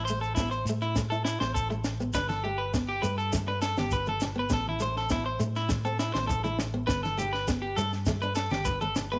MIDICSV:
0, 0, Header, 1, 7, 480
1, 0, Start_track
1, 0, Key_signature, 1, "major"
1, 0, Tempo, 592300
1, 1743, Time_signature, 4, 2, 24, 8
1, 7448, End_track
2, 0, Start_track
2, 0, Title_t, "Clean electric guitar"
2, 0, Program_c, 0, 27
2, 41, Note_on_c, 0, 72, 84
2, 162, Note_off_c, 0, 72, 0
2, 172, Note_on_c, 0, 69, 77
2, 279, Note_off_c, 0, 69, 0
2, 283, Note_on_c, 0, 64, 80
2, 403, Note_off_c, 0, 64, 0
2, 414, Note_on_c, 0, 72, 75
2, 525, Note_off_c, 0, 72, 0
2, 664, Note_on_c, 0, 64, 79
2, 770, Note_off_c, 0, 64, 0
2, 892, Note_on_c, 0, 69, 69
2, 1003, Note_off_c, 0, 69, 0
2, 1009, Note_on_c, 0, 64, 75
2, 1126, Note_off_c, 0, 64, 0
2, 1136, Note_on_c, 0, 72, 78
2, 1246, Note_off_c, 0, 72, 0
2, 1251, Note_on_c, 0, 69, 82
2, 1367, Note_off_c, 0, 69, 0
2, 1739, Note_on_c, 0, 71, 93
2, 1851, Note_off_c, 0, 71, 0
2, 1855, Note_on_c, 0, 69, 74
2, 1965, Note_off_c, 0, 69, 0
2, 1975, Note_on_c, 0, 67, 82
2, 2089, Note_off_c, 0, 67, 0
2, 2091, Note_on_c, 0, 71, 74
2, 2202, Note_off_c, 0, 71, 0
2, 2338, Note_on_c, 0, 67, 74
2, 2446, Note_off_c, 0, 67, 0
2, 2447, Note_on_c, 0, 71, 80
2, 2565, Note_off_c, 0, 71, 0
2, 2576, Note_on_c, 0, 69, 81
2, 2685, Note_off_c, 0, 69, 0
2, 2820, Note_on_c, 0, 71, 70
2, 2927, Note_off_c, 0, 71, 0
2, 2931, Note_on_c, 0, 69, 85
2, 3046, Note_off_c, 0, 69, 0
2, 3066, Note_on_c, 0, 67, 71
2, 3171, Note_off_c, 0, 67, 0
2, 3182, Note_on_c, 0, 71, 87
2, 3293, Note_off_c, 0, 71, 0
2, 3313, Note_on_c, 0, 69, 79
2, 3414, Note_off_c, 0, 69, 0
2, 3560, Note_on_c, 0, 71, 79
2, 3658, Note_off_c, 0, 71, 0
2, 3675, Note_on_c, 0, 69, 93
2, 3780, Note_off_c, 0, 69, 0
2, 3798, Note_on_c, 0, 64, 75
2, 3897, Note_off_c, 0, 64, 0
2, 3907, Note_on_c, 0, 72, 84
2, 4015, Note_off_c, 0, 72, 0
2, 4032, Note_on_c, 0, 69, 79
2, 4134, Note_off_c, 0, 69, 0
2, 4146, Note_on_c, 0, 64, 82
2, 4255, Note_off_c, 0, 64, 0
2, 4261, Note_on_c, 0, 72, 76
2, 4368, Note_off_c, 0, 72, 0
2, 4509, Note_on_c, 0, 64, 76
2, 4612, Note_off_c, 0, 64, 0
2, 4740, Note_on_c, 0, 69, 66
2, 4847, Note_off_c, 0, 69, 0
2, 4858, Note_on_c, 0, 64, 80
2, 4970, Note_off_c, 0, 64, 0
2, 4973, Note_on_c, 0, 72, 78
2, 5081, Note_off_c, 0, 72, 0
2, 5084, Note_on_c, 0, 69, 84
2, 5203, Note_off_c, 0, 69, 0
2, 5217, Note_on_c, 0, 64, 77
2, 5326, Note_off_c, 0, 64, 0
2, 5567, Note_on_c, 0, 71, 103
2, 5685, Note_off_c, 0, 71, 0
2, 5699, Note_on_c, 0, 69, 78
2, 5807, Note_off_c, 0, 69, 0
2, 5823, Note_on_c, 0, 67, 84
2, 5934, Note_off_c, 0, 67, 0
2, 5938, Note_on_c, 0, 71, 84
2, 6047, Note_off_c, 0, 71, 0
2, 6174, Note_on_c, 0, 67, 74
2, 6284, Note_off_c, 0, 67, 0
2, 6292, Note_on_c, 0, 69, 87
2, 6408, Note_off_c, 0, 69, 0
2, 6659, Note_on_c, 0, 71, 74
2, 6767, Note_off_c, 0, 71, 0
2, 6771, Note_on_c, 0, 69, 80
2, 6887, Note_off_c, 0, 69, 0
2, 6899, Note_on_c, 0, 67, 76
2, 7008, Note_off_c, 0, 67, 0
2, 7010, Note_on_c, 0, 71, 88
2, 7127, Note_off_c, 0, 71, 0
2, 7141, Note_on_c, 0, 69, 80
2, 7249, Note_off_c, 0, 69, 0
2, 7389, Note_on_c, 0, 71, 80
2, 7448, Note_off_c, 0, 71, 0
2, 7448, End_track
3, 0, Start_track
3, 0, Title_t, "Nylon-string guitar"
3, 0, Program_c, 1, 24
3, 79, Note_on_c, 1, 57, 77
3, 210, Note_off_c, 1, 57, 0
3, 323, Note_on_c, 1, 59, 85
3, 453, Note_off_c, 1, 59, 0
3, 561, Note_on_c, 1, 57, 80
3, 691, Note_off_c, 1, 57, 0
3, 790, Note_on_c, 1, 57, 86
3, 858, Note_off_c, 1, 57, 0
3, 905, Note_on_c, 1, 64, 73
3, 1041, Note_off_c, 1, 64, 0
3, 1148, Note_on_c, 1, 59, 70
3, 1283, Note_off_c, 1, 59, 0
3, 1381, Note_on_c, 1, 57, 74
3, 1517, Note_off_c, 1, 57, 0
3, 1623, Note_on_c, 1, 59, 75
3, 1689, Note_off_c, 1, 59, 0
3, 1739, Note_on_c, 1, 62, 93
3, 1875, Note_off_c, 1, 62, 0
3, 1980, Note_on_c, 1, 57, 73
3, 2116, Note_off_c, 1, 57, 0
3, 2217, Note_on_c, 1, 59, 86
3, 2353, Note_off_c, 1, 59, 0
3, 2452, Note_on_c, 1, 57, 84
3, 2590, Note_off_c, 1, 57, 0
3, 2694, Note_on_c, 1, 57, 87
3, 2765, Note_off_c, 1, 57, 0
3, 2818, Note_on_c, 1, 62, 74
3, 2955, Note_off_c, 1, 62, 0
3, 3062, Note_on_c, 1, 59, 70
3, 3198, Note_off_c, 1, 59, 0
3, 3299, Note_on_c, 1, 57, 75
3, 3436, Note_off_c, 1, 57, 0
3, 3529, Note_on_c, 1, 59, 74
3, 3599, Note_off_c, 1, 59, 0
3, 3645, Note_on_c, 1, 59, 90
3, 3785, Note_off_c, 1, 59, 0
3, 3890, Note_on_c, 1, 57, 83
3, 4029, Note_off_c, 1, 57, 0
3, 4141, Note_on_c, 1, 59, 84
3, 4276, Note_off_c, 1, 59, 0
3, 4372, Note_on_c, 1, 57, 80
3, 4510, Note_off_c, 1, 57, 0
3, 4609, Note_on_c, 1, 57, 88
3, 4682, Note_off_c, 1, 57, 0
3, 4740, Note_on_c, 1, 60, 80
3, 4877, Note_off_c, 1, 60, 0
3, 4978, Note_on_c, 1, 59, 68
3, 5116, Note_off_c, 1, 59, 0
3, 5220, Note_on_c, 1, 57, 77
3, 5357, Note_off_c, 1, 57, 0
3, 5460, Note_on_c, 1, 59, 75
3, 5527, Note_off_c, 1, 59, 0
3, 5569, Note_on_c, 1, 59, 93
3, 5708, Note_off_c, 1, 59, 0
3, 5814, Note_on_c, 1, 57, 77
3, 5952, Note_off_c, 1, 57, 0
3, 6060, Note_on_c, 1, 59, 94
3, 6196, Note_off_c, 1, 59, 0
3, 6302, Note_on_c, 1, 57, 87
3, 6437, Note_off_c, 1, 57, 0
3, 6547, Note_on_c, 1, 57, 93
3, 6616, Note_off_c, 1, 57, 0
3, 6670, Note_on_c, 1, 62, 80
3, 6805, Note_off_c, 1, 62, 0
3, 7147, Note_on_c, 1, 57, 76
3, 7283, Note_off_c, 1, 57, 0
3, 7401, Note_on_c, 1, 59, 73
3, 7448, Note_off_c, 1, 59, 0
3, 7448, End_track
4, 0, Start_track
4, 0, Title_t, "Fingered electric bass"
4, 0, Program_c, 2, 33
4, 0, Note_on_c, 2, 33, 102
4, 510, Note_off_c, 2, 33, 0
4, 529, Note_on_c, 2, 45, 91
4, 1107, Note_off_c, 2, 45, 0
4, 1138, Note_on_c, 2, 33, 87
4, 1706, Note_off_c, 2, 33, 0
4, 1737, Note_on_c, 2, 31, 97
4, 2427, Note_off_c, 2, 31, 0
4, 2465, Note_on_c, 2, 43, 92
4, 3034, Note_off_c, 2, 43, 0
4, 3061, Note_on_c, 2, 31, 92
4, 3628, Note_off_c, 2, 31, 0
4, 3661, Note_on_c, 2, 33, 102
4, 4349, Note_off_c, 2, 33, 0
4, 4377, Note_on_c, 2, 45, 98
4, 4951, Note_off_c, 2, 45, 0
4, 4980, Note_on_c, 2, 33, 89
4, 5548, Note_off_c, 2, 33, 0
4, 5584, Note_on_c, 2, 31, 101
4, 6272, Note_off_c, 2, 31, 0
4, 6301, Note_on_c, 2, 43, 101
4, 6874, Note_off_c, 2, 43, 0
4, 6897, Note_on_c, 2, 31, 93
4, 7448, Note_off_c, 2, 31, 0
4, 7448, End_track
5, 0, Start_track
5, 0, Title_t, "Muted clean electric guitar strokes"
5, 1379, Note_on_c, 9, 29, 72
5, 1460, Note_off_c, 9, 29, 0
5, 7448, End_track
6, 0, Start_track
6, 0, Title_t, "Shekere"
6, 61, Note_on_c, 9, 82, 81
6, 142, Note_off_c, 9, 82, 0
6, 186, Note_on_c, 9, 82, 31
6, 267, Note_off_c, 9, 82, 0
6, 295, Note_on_c, 9, 82, 95
6, 376, Note_off_c, 9, 82, 0
6, 419, Note_on_c, 9, 82, 31
6, 500, Note_off_c, 9, 82, 0
6, 539, Note_on_c, 9, 82, 74
6, 620, Note_off_c, 9, 82, 0
6, 661, Note_on_c, 9, 82, 30
6, 742, Note_off_c, 9, 82, 0
6, 778, Note_on_c, 9, 82, 95
6, 859, Note_off_c, 9, 82, 0
6, 910, Note_on_c, 9, 82, 28
6, 991, Note_off_c, 9, 82, 0
6, 1024, Note_on_c, 9, 82, 83
6, 1105, Note_off_c, 9, 82, 0
6, 1152, Note_on_c, 9, 82, 29
6, 1233, Note_off_c, 9, 82, 0
6, 1264, Note_on_c, 9, 82, 94
6, 1345, Note_off_c, 9, 82, 0
6, 1388, Note_on_c, 9, 82, 29
6, 1469, Note_off_c, 9, 82, 0
6, 1494, Note_on_c, 9, 82, 72
6, 1575, Note_off_c, 9, 82, 0
6, 1625, Note_on_c, 9, 82, 28
6, 1706, Note_off_c, 9, 82, 0
6, 1729, Note_on_c, 9, 82, 102
6, 1810, Note_off_c, 9, 82, 0
6, 1856, Note_on_c, 9, 82, 26
6, 1937, Note_off_c, 9, 82, 0
6, 2220, Note_on_c, 9, 82, 89
6, 2301, Note_off_c, 9, 82, 0
6, 2460, Note_on_c, 9, 82, 72
6, 2541, Note_off_c, 9, 82, 0
6, 2587, Note_on_c, 9, 82, 28
6, 2668, Note_off_c, 9, 82, 0
6, 2696, Note_on_c, 9, 82, 97
6, 2777, Note_off_c, 9, 82, 0
6, 2933, Note_on_c, 9, 82, 73
6, 3014, Note_off_c, 9, 82, 0
6, 3052, Note_on_c, 9, 82, 27
6, 3133, Note_off_c, 9, 82, 0
6, 3168, Note_on_c, 9, 82, 89
6, 3249, Note_off_c, 9, 82, 0
6, 3292, Note_on_c, 9, 82, 27
6, 3373, Note_off_c, 9, 82, 0
6, 3406, Note_on_c, 9, 82, 68
6, 3487, Note_off_c, 9, 82, 0
6, 3643, Note_on_c, 9, 82, 98
6, 3724, Note_off_c, 9, 82, 0
6, 3887, Note_on_c, 9, 82, 75
6, 3968, Note_off_c, 9, 82, 0
6, 4128, Note_on_c, 9, 82, 84
6, 4209, Note_off_c, 9, 82, 0
6, 4377, Note_on_c, 9, 82, 69
6, 4458, Note_off_c, 9, 82, 0
6, 4504, Note_on_c, 9, 82, 27
6, 4585, Note_off_c, 9, 82, 0
6, 4616, Note_on_c, 9, 82, 93
6, 4697, Note_off_c, 9, 82, 0
6, 4746, Note_on_c, 9, 82, 27
6, 4827, Note_off_c, 9, 82, 0
6, 4858, Note_on_c, 9, 82, 70
6, 4939, Note_off_c, 9, 82, 0
6, 4985, Note_on_c, 9, 82, 28
6, 5066, Note_off_c, 9, 82, 0
6, 5105, Note_on_c, 9, 82, 96
6, 5186, Note_off_c, 9, 82, 0
6, 5224, Note_on_c, 9, 82, 27
6, 5305, Note_off_c, 9, 82, 0
6, 5350, Note_on_c, 9, 82, 67
6, 5431, Note_off_c, 9, 82, 0
6, 5591, Note_on_c, 9, 82, 88
6, 5672, Note_off_c, 9, 82, 0
6, 5710, Note_on_c, 9, 82, 26
6, 5791, Note_off_c, 9, 82, 0
6, 5824, Note_on_c, 9, 82, 69
6, 5905, Note_off_c, 9, 82, 0
6, 6059, Note_on_c, 9, 82, 92
6, 6140, Note_off_c, 9, 82, 0
6, 6300, Note_on_c, 9, 82, 72
6, 6381, Note_off_c, 9, 82, 0
6, 6424, Note_on_c, 9, 82, 29
6, 6505, Note_off_c, 9, 82, 0
6, 6531, Note_on_c, 9, 82, 90
6, 6612, Note_off_c, 9, 82, 0
6, 6660, Note_on_c, 9, 82, 29
6, 6741, Note_off_c, 9, 82, 0
6, 6768, Note_on_c, 9, 82, 76
6, 6849, Note_off_c, 9, 82, 0
6, 6892, Note_on_c, 9, 82, 30
6, 6973, Note_off_c, 9, 82, 0
6, 7010, Note_on_c, 9, 82, 97
6, 7091, Note_off_c, 9, 82, 0
6, 7141, Note_on_c, 9, 82, 30
6, 7222, Note_off_c, 9, 82, 0
6, 7257, Note_on_c, 9, 82, 76
6, 7338, Note_off_c, 9, 82, 0
6, 7448, End_track
7, 0, Start_track
7, 0, Title_t, "Drums"
7, 301, Note_on_c, 9, 38, 70
7, 302, Note_on_c, 9, 36, 90
7, 382, Note_off_c, 9, 38, 0
7, 383, Note_off_c, 9, 36, 0
7, 775, Note_on_c, 9, 38, 75
7, 780, Note_on_c, 9, 36, 94
7, 856, Note_off_c, 9, 38, 0
7, 861, Note_off_c, 9, 36, 0
7, 1011, Note_on_c, 9, 38, 77
7, 1092, Note_off_c, 9, 38, 0
7, 1139, Note_on_c, 9, 38, 72
7, 1220, Note_off_c, 9, 38, 0
7, 1257, Note_on_c, 9, 36, 91
7, 1338, Note_off_c, 9, 36, 0
7, 1494, Note_on_c, 9, 38, 74
7, 1575, Note_off_c, 9, 38, 0
7, 1740, Note_on_c, 9, 36, 94
7, 1740, Note_on_c, 9, 38, 79
7, 1821, Note_off_c, 9, 36, 0
7, 1821, Note_off_c, 9, 38, 0
7, 1862, Note_on_c, 9, 63, 74
7, 1869, Note_on_c, 9, 38, 27
7, 1943, Note_off_c, 9, 63, 0
7, 1950, Note_off_c, 9, 38, 0
7, 2221, Note_on_c, 9, 36, 94
7, 2224, Note_on_c, 9, 38, 67
7, 2302, Note_off_c, 9, 36, 0
7, 2306, Note_off_c, 9, 38, 0
7, 2457, Note_on_c, 9, 64, 71
7, 2538, Note_off_c, 9, 64, 0
7, 2700, Note_on_c, 9, 36, 97
7, 2700, Note_on_c, 9, 38, 69
7, 2703, Note_on_c, 9, 63, 66
7, 2781, Note_off_c, 9, 36, 0
7, 2781, Note_off_c, 9, 38, 0
7, 2784, Note_off_c, 9, 63, 0
7, 2936, Note_on_c, 9, 38, 75
7, 3017, Note_off_c, 9, 38, 0
7, 3060, Note_on_c, 9, 38, 73
7, 3067, Note_on_c, 9, 63, 65
7, 3141, Note_off_c, 9, 38, 0
7, 3148, Note_off_c, 9, 63, 0
7, 3177, Note_on_c, 9, 36, 94
7, 3187, Note_on_c, 9, 64, 65
7, 3259, Note_off_c, 9, 36, 0
7, 3268, Note_off_c, 9, 64, 0
7, 3307, Note_on_c, 9, 63, 67
7, 3388, Note_off_c, 9, 63, 0
7, 3419, Note_on_c, 9, 38, 79
7, 3423, Note_on_c, 9, 64, 69
7, 3500, Note_off_c, 9, 38, 0
7, 3504, Note_off_c, 9, 64, 0
7, 3655, Note_on_c, 9, 38, 71
7, 3660, Note_on_c, 9, 36, 95
7, 3736, Note_off_c, 9, 38, 0
7, 3741, Note_off_c, 9, 36, 0
7, 3790, Note_on_c, 9, 63, 66
7, 3871, Note_off_c, 9, 63, 0
7, 3907, Note_on_c, 9, 64, 57
7, 3988, Note_off_c, 9, 64, 0
7, 4022, Note_on_c, 9, 38, 29
7, 4103, Note_off_c, 9, 38, 0
7, 4137, Note_on_c, 9, 38, 67
7, 4142, Note_on_c, 9, 36, 91
7, 4218, Note_off_c, 9, 38, 0
7, 4223, Note_off_c, 9, 36, 0
7, 4378, Note_on_c, 9, 64, 70
7, 4459, Note_off_c, 9, 64, 0
7, 4507, Note_on_c, 9, 38, 27
7, 4588, Note_off_c, 9, 38, 0
7, 4611, Note_on_c, 9, 38, 73
7, 4620, Note_on_c, 9, 36, 99
7, 4620, Note_on_c, 9, 63, 71
7, 4692, Note_off_c, 9, 38, 0
7, 4701, Note_off_c, 9, 36, 0
7, 4701, Note_off_c, 9, 63, 0
7, 4857, Note_on_c, 9, 38, 75
7, 4938, Note_off_c, 9, 38, 0
7, 4983, Note_on_c, 9, 38, 72
7, 4985, Note_on_c, 9, 63, 75
7, 5064, Note_off_c, 9, 38, 0
7, 5066, Note_off_c, 9, 63, 0
7, 5099, Note_on_c, 9, 36, 96
7, 5102, Note_on_c, 9, 64, 76
7, 5180, Note_off_c, 9, 36, 0
7, 5183, Note_off_c, 9, 64, 0
7, 5223, Note_on_c, 9, 63, 77
7, 5304, Note_off_c, 9, 63, 0
7, 5337, Note_on_c, 9, 38, 75
7, 5346, Note_on_c, 9, 64, 84
7, 5418, Note_off_c, 9, 38, 0
7, 5427, Note_off_c, 9, 64, 0
7, 5579, Note_on_c, 9, 38, 76
7, 5582, Note_on_c, 9, 36, 99
7, 5660, Note_off_c, 9, 38, 0
7, 5663, Note_off_c, 9, 36, 0
7, 5708, Note_on_c, 9, 38, 28
7, 5716, Note_on_c, 9, 63, 83
7, 5789, Note_off_c, 9, 38, 0
7, 5797, Note_off_c, 9, 63, 0
7, 5830, Note_on_c, 9, 64, 76
7, 5911, Note_off_c, 9, 64, 0
7, 5950, Note_on_c, 9, 38, 27
7, 6031, Note_off_c, 9, 38, 0
7, 6063, Note_on_c, 9, 36, 92
7, 6068, Note_on_c, 9, 38, 73
7, 6144, Note_off_c, 9, 36, 0
7, 6149, Note_off_c, 9, 38, 0
7, 6308, Note_on_c, 9, 64, 77
7, 6389, Note_off_c, 9, 64, 0
7, 6426, Note_on_c, 9, 38, 28
7, 6507, Note_off_c, 9, 38, 0
7, 6536, Note_on_c, 9, 38, 74
7, 6540, Note_on_c, 9, 36, 90
7, 6544, Note_on_c, 9, 63, 83
7, 6617, Note_off_c, 9, 38, 0
7, 6621, Note_off_c, 9, 36, 0
7, 6625, Note_off_c, 9, 63, 0
7, 6781, Note_on_c, 9, 38, 72
7, 6862, Note_off_c, 9, 38, 0
7, 6901, Note_on_c, 9, 63, 80
7, 6908, Note_on_c, 9, 38, 74
7, 6982, Note_off_c, 9, 63, 0
7, 6989, Note_off_c, 9, 38, 0
7, 7021, Note_on_c, 9, 36, 97
7, 7027, Note_on_c, 9, 64, 74
7, 7102, Note_off_c, 9, 36, 0
7, 7108, Note_off_c, 9, 64, 0
7, 7141, Note_on_c, 9, 63, 74
7, 7222, Note_off_c, 9, 63, 0
7, 7259, Note_on_c, 9, 64, 78
7, 7261, Note_on_c, 9, 38, 77
7, 7340, Note_off_c, 9, 64, 0
7, 7342, Note_off_c, 9, 38, 0
7, 7448, End_track
0, 0, End_of_file